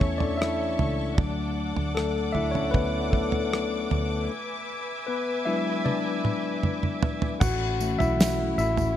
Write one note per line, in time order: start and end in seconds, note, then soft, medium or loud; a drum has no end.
0.00 0.75 E2 medium
0.00 1.14 E3 soft
0.00 1.18 A3 medium
0.00 1.20 C#4 medium
0.00 0.41 E4 medium
0.00 1.21 A4 medium
0.00 4.25 A4 medium
0.00 1.14 C#5 medium
0.00 1.21 C#5 medium
0.00 0.37 E5 medium
0.00 1.14 E5 soft
0.00 1.14 C#6 medium
0.00 kick medium
0.18 0.39 D4 medium
0.18 0.39 D5 medium
0.18 floor tom medium
0.37 0.95 E4 medium
0.37 0.93 E5 medium
0.42 cross-stick medium
0.79 1.15 C#2 medium
0.79 floor tom medium
1.17 1.73 D2 medium
1.17 4.25 F#3 soft
1.17 1.96 A3 soft
1.17 4.26 D4 medium
1.17 4.27 D5 soft
1.17 4.27 F#5 medium
1.17 7.38 D6 medium
1.17 kick medium
1.17 floor tom medium
1.76 2.31 D2 medium
1.76 floor tom medium
1.95 2.33 A3 medium
1.95 2.35 A4 medium
1.95 cross-stick medium
2.32 2.71 D2 medium
2.32 2.54 E4 medium
2.32 2.52 E5 medium
2.32 floor tom medium
2.51 2.73 C#4 medium
2.51 2.73 C#5 medium
2.51 floor tom medium
2.71 3.87 D2 medium
2.71 3.10 B3 medium
2.71 3.13 B4 medium
2.71 kick medium
2.71 floor tom medium
3.11 3.88 A3 medium
3.11 3.86 A4 medium
3.11 kick medium
3.32 floor tom medium
3.53 cross-stick medium
3.91 4.27 D2 medium
3.91 floor tom medium
4.31 7.39 B4 medium
4.31 7.39 E5 medium
4.31 7.39 G#5 medium
5.07 5.26 B3 medium
5.07 5.24 B4 medium
5.45 5.98 F#3 medium
5.45 5.98 G#3 soft
5.45 5.85 D4 medium
5.45 5.83 E4 medium
5.45 5.86 E5 medium
5.85 6.99 D4 medium
5.85 6.98 D5 medium
5.85 high tom medium
6.25 mid tom medium
6.63 mid tom medium
6.83 mid tom medium
7.03 floor tom medium
7.22 floor tom medium
7.40 7.96 A1 loud
7.40 8.97 A3 medium
7.40 8.97 C#4 medium
7.40 8.97 E4 medium
7.40 7.96 F#4 medium
7.40 8.01 F#5 loud
7.40 kick loud
7.40 floor tom loud
7.40 crash loud
7.40 tambourine soft
7.80 8.93 E3 soft
7.80 8.94 A3 soft
7.80 8.94 C#4 medium
7.80 tambourine soft
7.99 8.54 B1 medium
7.99 8.55 E4 medium
7.99 8.54 E5 loud
7.99 floor tom medium
7.99 tambourine soft
8.20 snare loud
8.20 tambourine medium
8.58 8.94 A1 medium
8.58 8.96 E4 medium
8.58 8.97 E5 medium
8.58 tambourine soft
8.77 floor tom medium
8.77 tambourine soft